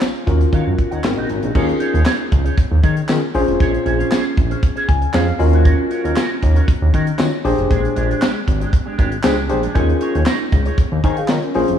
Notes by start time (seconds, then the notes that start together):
0.00 muted clean electric guitar stroke, snare, clap, tambourine
0.14 muted clean electric guitar stroke, closed hi-hat
0.27 D#2 C#4 F4 F#4 A#4, kick, closed hi-hat
0.40 muted clean electric guitar stroke, closed hi-hat
0.53 D#3 F#4 C#5 F5, kick, closed hi-hat
0.66 F#2, muted clean electric guitar stroke
0.78 muted clean electric guitar stroke, kick, closed hi-hat
0.91 D#2 F#4 C#5 F#5, closed hi-hat
1.03 G#1 C4 D#4 F#4 A#4, snare, clap, tambourine
1.17 A#1 D#4 F#4 D#5
1.29 G#1, muted clean electric guitar stroke, closed hi-hat
1.42 A#1, muted clean electric guitar stroke, closed hi-hat
1.54 D#2 C#4 D#4 F4 G#4 A#4 C#5, kick, crash
1.68 muted clean electric guitar stroke, closed hi-hat
1.80 D#4 G#4 C#5, closed hi-hat
1.93 D#2 D#4 G#4 C#5, closed hi-hat
2.05 D#4 G#4 C#5, snare, clap, tambourine
2.19 muted clean electric guitar stroke
2.31 C#2, muted clean electric guitar stroke, kick, closed hi-hat
2.45 D#4 G#4 C#5, closed hi-hat
2.57 muted clean electric guitar stroke, kick, closed hi-hat
2.71 D#2, muted clean electric guitar stroke
2.83 D#3 D#4 G#4 C#5, kick, closed hi-hat
2.96 muted clean electric guitar stroke, closed hi-hat
3.08 D#3 C#4 F4 G#4 A#4, muted clean electric guitar stroke, snare, clap, tambourine
3.22 muted clean electric guitar stroke
3.34 A#1 C#4 F4 G#4 C5, open hi-hat
3.48 F1, muted clean electric guitar stroke, closed hi-hat
3.60 A#1 C#4 G#4 C#5, kick, closed hi-hat
3.73 muted clean electric guitar stroke, closed hi-hat
3.85 A#1 C#4 G#4 C5, closed hi-hat
3.99 C#4 G#4 C#5, closed hi-hat
4.11 C#4 G#4 C5, snare, clap, tambourine
4.24 muted clean electric guitar stroke
4.37 A#1, muted clean electric guitar stroke, kick, closed hi-hat
4.50 C#4 G#4 C5, closed hi-hat
4.62 muted clean electric guitar stroke, kick, closed hi-hat
4.76 C#4 G#4 C5, closed hi-hat
4.88 C#2 G#5, muted clean electric guitar stroke, kick, closed hi-hat
5.02 muted clean electric guitar stroke, closed hi-hat
5.13 F2 C#4 F4 G#4 C5 F5, snare, clap, tambourine
5.27 muted clean electric guitar stroke, closed hi-hat
5.39 D#2 C#4 F4 F#4 A#4 D#5, muted clean electric guitar stroke, open hi-hat
5.53 C#4 F#4 C5, closed hi-hat
5.65 C#4 F#4 A#4, kick, closed hi-hat
5.78 muted clean electric guitar stroke
5.91 C#4 F#4 A#4, closed hi-hat
6.04 D#2 C#4 F#4 A#4, closed hi-hat
6.16 C#4 F#4 A#4, snare, clap, tambourine
6.30 muted clean electric guitar stroke
6.42 D#2, muted clean electric guitar stroke, kick, closed hi-hat
6.55 C#4 F#4 A#4, closed hi-hat
6.67 muted clean electric guitar stroke, kick, closed hi-hat
6.81 D#2, muted clean electric guitar stroke
6.93 D#3 C#4 F#4 A#4, kick, closed hi-hat
7.07 muted clean electric guitar stroke, closed hi-hat
7.18 D#3 C#4 F4 F#4 C#5, muted clean electric guitar stroke, snare, clap, tambourine
7.32 muted clean electric guitar stroke
7.44 A#1 D4 G4 G#4 C5, open hi-hat
7.57 F1, muted clean electric guitar stroke, closed hi-hat
7.69 A#1 G#3 D4 G#4, kick, closed hi-hat
7.83 muted clean electric guitar stroke, closed hi-hat
7.95 A#1 G#3 D4 G4, closed hi-hat
8.09 G#3 D4 G#4, closed hi-hat
8.21 G#3 D4 G4, snare, clap, tambourine
8.34 muted clean electric guitar stroke
8.46 G#1, muted clean electric guitar stroke, kick, closed hi-hat
8.60 G#3 D4 G4, closed hi-hat
8.72 muted clean electric guitar stroke, kick, closed hi-hat
8.86 G#3 D4 G4
8.98 G#1 G#3 D4 G4, kick, closed hi-hat
9.11 muted clean electric guitar stroke, closed hi-hat
9.23 C#2 G#3 D4 G4 G#4 C5, snare, clap, tambourine
9.37 muted clean electric guitar stroke
9.49 A#1 D4 G4 G#4 C5, muted clean electric guitar stroke, closed hi-hat
9.62 G#3 D4 G#4, closed hi-hat
9.74 D#2 C#4 D#4 F4 G#4 A#4 C#5, kick, closed hi-hat
9.89 muted clean electric guitar stroke, closed hi-hat
10.01 D#4 G#4 C#5, closed hi-hat
10.14 D#2 D#4 G#4 C#5, closed hi-hat
10.26 D#4 G#4 C#5, snare, clap, tambourine
10.40 muted clean electric guitar stroke
10.52 C#2, muted clean electric guitar stroke, kick, closed hi-hat
10.66 D#4 G#4 C#5, closed hi-hat
10.78 muted clean electric guitar stroke, kick, closed hi-hat
10.92 D#2, muted clean electric guitar stroke
11.03 D#3 D#4 G#4 C5 C#5 G#5, kick, closed hi-hat
11.17 G#4 F5, muted clean electric guitar stroke, closed hi-hat
11.28 D#3 F4 C#5, muted clean electric guitar stroke, snare, clap, tambourine
11.42 C#4 A#4, muted clean electric guitar stroke, closed hi-hat
11.54 A#1 C#4 F4 G#4 C5, open hi-hat
11.68 F1, muted clean electric guitar stroke, closed hi-hat